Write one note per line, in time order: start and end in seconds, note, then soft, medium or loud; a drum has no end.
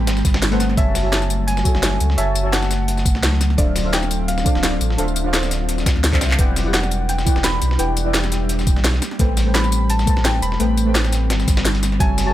0.00 0.74 G3 medium
0.00 0.51 A3 loud
0.00 0.74 C4 medium
0.00 0.79 G4 medium
0.00 0.51 A4 medium
0.00 0.52 B4 medium
0.00 0.52 C5 medium
0.00 0.79 G5 loud
0.00 0.78 A5 loud
0.00 0.74 B5 medium
0.07 0.23 G1 loud
0.07 snare loud
0.07 closed hi-hat medium
0.17 snare soft
0.17 tambourine soft
0.25 0.76 G1 medium
0.25 kick loud
0.25 snare soft
0.25 closed hi-hat medium
0.25 tambourine medium
0.34 snare loud
0.34 snare soft
0.34 closed hi-hat medium
0.42 snare loud
0.42 snare soft
0.42 closed hi-hat medium
0.51 0.75 A3 loud
0.51 0.75 A4 medium
0.51 0.75 B4 medium
0.51 0.76 C5 medium
0.51 0.76 F#5 loud
0.51 snare soft
0.51 closed hi-hat medium
0.60 snare soft
0.60 closed hi-hat medium
0.60 tambourine medium
0.69 snare soft
0.76 1.64 F#1 loud
0.76 6.35 F#3 medium
0.76 3.55 A3 medium
0.76 1.01 F#4 medium
0.76 1.02 C#5 medium
0.76 1.02 E5 medium
0.76 1.44 E5 loud
0.76 1.02 G#5 medium
0.76 1.03 A5 loud
0.76 kick loud
0.76 closed hi-hat medium
0.95 snare medium
0.95 closed hi-hat medium
0.95 open hi-hat medium
0.95 tambourine medium
1.03 1.62 F#4 medium
1.03 1.63 C#5 medium
1.03 1.63 E5 medium
1.03 1.64 G#5 medium
1.03 1.64 A5 medium
1.13 snare loud
1.13 closed hi-hat medium
1.22 snare soft
1.22 tambourine soft
1.30 closed hi-hat medium
1.30 tambourine medium
1.47 2.14 G#5 loud
1.47 closed hi-hat medium
1.57 snare medium
1.57 tambourine soft
1.63 2.15 F#4 loud
1.63 2.17 A4 loud
1.63 2.15 C#5 medium
1.63 2.16 E5 medium
1.63 2.16 G#5 medium
1.63 kick loud
1.63 closed hi-hat medium
1.63 tambourine medium
1.75 1.99 F#1 medium
1.75 snare medium
1.75 snare soft
1.83 snare loud
1.83 closed hi-hat medium
2.00 2.16 C#2 medium
2.00 closed hi-hat medium
2.00 tambourine medium
2.10 snare soft
2.17 3.16 F#1 loud
2.17 2.42 F#4 medium
2.17 2.42 C#5 medium
2.17 2.54 E5 loud
2.17 2.42 E5 medium
2.17 2.43 G#5 medium
2.17 2.43 A5 loud
2.17 closed hi-hat medium
2.35 closed hi-hat medium
2.35 tambourine medium
2.43 3.55 F#4 medium
2.43 3.56 C#5 medium
2.43 3.56 E5 medium
2.43 3.57 G#5 medium
2.43 3.57 A5 loud
2.53 3.36 F#5 loud
2.53 snare loud
2.53 closed hi-hat medium
2.62 snare soft
2.62 tambourine soft
2.71 snare soft
2.71 closed hi-hat medium
2.71 tambourine medium
2.88 closed hi-hat medium
2.97 snare soft
2.97 tambourine soft
3.05 kick loud
3.05 closed hi-hat medium
3.05 tambourine medium
3.15 3.57 C#2 medium
3.15 snare soft
3.23 snare loud
3.23 closed hi-hat medium
3.23 closed hi-hat loud
3.32 snare soft
3.41 snare soft
3.41 closed hi-hat medium
3.41 tambourine medium
3.50 snare soft
3.57 4.44 D1 loud
3.57 6.36 C4 medium
3.57 3.82 D4 medium
3.57 6.36 F4 medium
3.57 3.83 A4 medium
3.57 3.83 C5 medium
3.57 3.91 D5 loud
3.57 3.83 E5 medium
3.57 3.83 F5 loud
3.57 kick loud
3.57 closed hi-hat medium
3.76 snare medium
3.76 closed hi-hat medium
3.76 open hi-hat medium
3.76 tambourine medium
3.83 4.42 D4 medium
3.83 4.43 A4 medium
3.83 4.44 C5 medium
3.83 4.44 E5 medium
3.83 4.45 F5 medium
3.93 4.26 G5 loud
3.93 snare loud
3.93 closed hi-hat medium
3.93 closed hi-hat loud
4.03 snare soft
4.03 tambourine soft
4.11 closed hi-hat medium
4.11 tambourine medium
4.28 6.00 F5 medium
4.28 closed hi-hat medium
4.38 snare medium
4.38 tambourine soft
4.44 4.95 D4 loud
4.44 4.96 A4 medium
4.44 4.96 C5 medium
4.44 4.97 D5 medium
4.44 4.97 F5 loud
4.44 kick loud
4.44 closed hi-hat medium
4.44 tambourine medium
4.55 4.79 D1 medium
4.55 snare soft
4.63 snare loud
4.63 closed hi-hat medium
4.63 closed hi-hat loud
4.81 4.97 A1 medium
4.81 closed hi-hat medium
4.81 tambourine medium
4.90 snare soft
4.97 5.85 D1 loud
4.97 5.22 D4 loud
4.97 5.23 A4 medium
4.97 5.23 C5 medium
4.97 5.23 E5 medium
4.97 5.24 F5 loud
4.97 closed hi-hat medium
5.08 tambourine soft
5.16 closed hi-hat medium
5.16 tambourine medium
5.23 6.10 D4 medium
5.23 6.11 A4 medium
5.23 6.11 C5 medium
5.23 6.12 D5 medium
5.23 6.12 F5 loud
5.34 snare loud
5.34 closed hi-hat loud
5.34 closed hi-hat medium
5.43 snare soft
5.43 tambourine soft
5.51 snare soft
5.51 closed hi-hat medium
5.51 tambourine medium
5.69 closed hi-hat loud
5.69 closed hi-hat medium
5.78 snare soft
5.78 tambourine soft
5.86 kick loud
5.86 snare loud
5.86 closed hi-hat medium
5.86 tambourine medium
5.95 6.20 D2 medium
5.95 snare soft
6.04 snare loud
6.04 snare soft
6.04 closed hi-hat loud
6.04 open hi-hat medium
6.12 6.36 D4 medium
6.12 6.37 A4 medium
6.12 6.37 C5 medium
6.12 6.37 E5 medium
6.12 6.37 F5 loud
6.12 kick medium
6.12 clap medium
6.12 tambourine soft
6.21 6.37 C2 medium
6.21 snare loud
6.21 closed hi-hat medium
6.21 tambourine medium
6.31 clap loud
6.38 7.25 E1 loud
6.38 8.99 G3 medium
6.38 8.99 D4 medium
6.38 6.63 E4 medium
6.38 8.99 G4 medium
6.38 6.63 B4 medium
6.38 6.63 D5 medium
6.38 6.64 F#5 medium
6.38 6.64 G5 loud
6.38 kick loud
6.38 closed hi-hat loud
6.38 closed hi-hat medium
6.56 snare medium
6.56 closed hi-hat medium
6.56 open hi-hat medium
6.56 tambourine medium
6.64 7.24 E4 medium
6.64 7.26 G4 loud
6.64 7.24 B4 medium
6.64 7.25 D5 medium
6.64 7.25 F#5 medium
6.74 7.10 F#5 medium
6.74 snare loud
6.74 closed hi-hat loud
6.74 closed hi-hat medium
6.83 snare soft
6.83 tambourine soft
6.91 closed hi-hat medium
6.91 tambourine medium
7.09 7.45 G5 loud
7.09 closed hi-hat medium
7.09 closed hi-hat loud
7.18 snare medium
7.18 tambourine soft
7.25 7.76 E4 loud
7.25 7.77 B4 medium
7.25 7.77 D5 medium
7.25 7.78 F#5 medium
7.25 7.78 G5 loud
7.25 kick loud
7.25 closed hi-hat medium
7.25 tambourine medium
7.36 7.60 E1 medium
7.36 snare medium
7.36 snare soft
7.44 7.80 B5 loud
7.44 snare loud
7.44 closed hi-hat loud
7.44 closed hi-hat medium
7.62 7.78 B1 medium
7.62 closed hi-hat medium
7.62 tambourine medium
7.71 snare soft
7.78 8.78 E1 loud
7.78 8.03 E4 medium
7.78 8.04 B4 medium
7.78 8.04 D5 medium
7.78 8.04 F#5 medium
7.78 8.81 G5 loud
7.78 8.04 G5 loud
7.78 closed hi-hat medium
7.97 closed hi-hat medium
7.97 tambourine medium
8.04 9.00 E4 medium
8.04 9.01 B4 medium
8.04 9.01 D5 medium
8.04 9.01 E5 medium
8.04 9.02 G5 loud
8.14 snare loud
8.14 closed hi-hat medium
8.24 snare soft
8.24 tambourine soft
8.32 snare soft
8.32 closed hi-hat medium
8.32 tambourine medium
8.49 closed hi-hat medium
8.59 snare soft
8.59 tambourine soft
8.67 kick loud
8.67 closed hi-hat medium
8.67 tambourine medium
8.76 9.01 B1 medium
8.76 snare soft
8.84 snare loud
8.84 closed hi-hat loud
8.84 closed hi-hat medium
8.94 snare soft
9.02 11.97 G3 medium
9.02 11.97 C4 medium
9.02 11.97 B5 medium
9.02 snare soft
9.02 snare medium
9.02 closed hi-hat medium
9.02 tambourine medium
9.11 snare soft
9.19 10.06 A1 loud
9.19 9.43 A3 medium
9.19 9.44 A4 medium
9.19 9.44 B4 medium
9.19 9.45 C5 medium
9.19 9.45 G5 loud
9.19 kick loud
9.19 closed hi-hat medium
9.37 snare medium
9.37 closed hi-hat medium
9.37 open hi-hat medium
9.37 tambourine medium
9.45 10.04 A3 medium
9.45 10.05 A4 medium
9.45 10.05 B4 medium
9.45 10.06 C5 medium
9.45 10.06 G5 loud
9.55 9.87 B5 loud
9.55 snare loud
9.55 closed hi-hat medium
9.64 snare soft
9.64 tambourine soft
9.72 closed hi-hat medium
9.72 tambourine medium
9.90 10.23 A5 loud
9.90 closed hi-hat medium
9.99 snare medium
9.99 tambourine soft
10.05 10.57 A3 loud
10.05 10.57 A4 medium
10.05 10.58 B4 medium
10.05 10.58 C5 medium
10.05 10.59 A5 loud
10.05 kick loud
10.05 closed hi-hat medium
10.05 tambourine medium
10.17 10.41 A1 medium
10.17 snare medium
10.17 snare soft
10.25 10.43 G5 medium
10.25 snare loud
10.25 closed hi-hat medium
10.42 10.58 E1 medium
10.42 10.75 B5 loud
10.42 closed hi-hat medium
10.42 tambourine medium
10.52 snare soft
10.59 11.32 A1 loud
10.59 10.84 A3 loud
10.59 10.84 A4 medium
10.59 10.85 B4 medium
10.59 10.85 C5 medium
10.59 10.85 G5 loud
10.59 closed hi-hat medium
10.77 closed hi-hat medium
10.77 tambourine medium
10.85 11.97 A3 medium
10.85 11.98 A4 medium
10.85 11.98 B4 medium
10.85 11.99 C5 medium
10.85 11.99 G5 loud
10.95 snare loud
10.95 closed hi-hat medium
11.04 snare soft
11.04 tambourine soft
11.12 snare soft
11.12 closed hi-hat medium
11.12 tambourine medium
11.30 11.46 G1 loud
11.30 snare loud
11.30 closed hi-hat medium
11.39 snare soft
11.39 tambourine soft
11.48 11.99 G1 loud
11.48 kick loud
11.48 snare soft
11.48 closed hi-hat medium
11.48 tambourine medium
11.57 snare loud
11.57 snare soft
11.57 closed hi-hat medium
11.65 snare loud
11.65 snare soft
11.65 closed hi-hat medium
11.75 snare soft
11.75 closed hi-hat medium
11.83 snare soft
11.83 closed hi-hat medium
11.83 tambourine medium
11.92 snare soft
11.99 12.34 F#1 loud
11.99 12.34 F#3 medium
11.99 12.34 A3 medium
11.99 12.24 F#4 medium
11.99 12.25 C#5 medium
11.99 12.25 E5 medium
11.99 12.28 G#5 loud
11.99 12.25 G#5 medium
11.99 12.25 A5 loud
11.99 kick loud
11.99 closed hi-hat medium
12.18 snare medium
12.18 closed hi-hat medium
12.18 open hi-hat medium
12.18 tambourine medium
12.26 12.34 F#4 medium
12.26 12.34 A4 medium
12.26 12.34 C#5 medium
12.26 12.34 E5 medium
12.26 12.34 G#5 medium
12.26 12.34 A5 loud